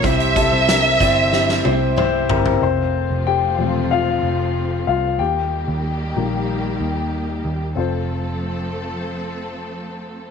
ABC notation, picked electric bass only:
X:1
M:4/4
L:1/16
Q:1/4=93
K:F
V:1 name="Picked electric bass" clef=bass
C,,3 C,,3 G,,,4 C,,4 G,,,2 | F,,,3 F,,,3 E,,,4 F,,,4 C,,2 | _E,,3 E,,3 B,,,4 E,,4 E,,2 | F,,,16 |]